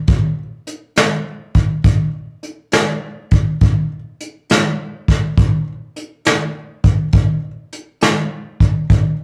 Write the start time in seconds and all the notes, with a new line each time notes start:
0.08 kick, closed hi-hat
0.67 closed hi-hat
0.96 snare, closed hi-hat
1.55 kick, closed hi-hat
1.84 kick, closed hi-hat
2.43 closed hi-hat
2.72 snare, closed hi-hat
3.31 kick, closed hi-hat
3.61 kick, closed hi-hat
4.21 closed hi-hat
4.50 snare, closed hi-hat
5.08 kick, snare, closed hi-hat
5.37 kick, closed hi-hat
5.96 closed hi-hat
6.25 snare, closed hi-hat
6.84 kick, closed hi-hat
7.13 kick, closed hi-hat
7.73 closed hi-hat
8.01 snare, closed hi-hat
8.60 kick, closed hi-hat
8.90 kick, closed hi-hat